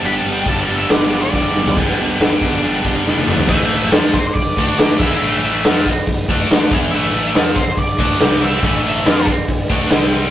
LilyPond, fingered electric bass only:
\new Staff \with { instrumentName = "Fingered electric bass" } { \clef bass \time 4/4 \key a \minor \tempo 4 = 140 g,,8 g,,8 g,,4 g,,4 g,,4 | g,,4 g,,8 g,,8 g,,8 g,,8 f,,8 g,,8 | a,,4 f,8 r4 d,4 e,8 | a,,4 f,8 r4 d,4 e,8 |
a,,4 f,8 r4 d,8 c,4 | a,,4 f,8 r4 d,8 c,4 | }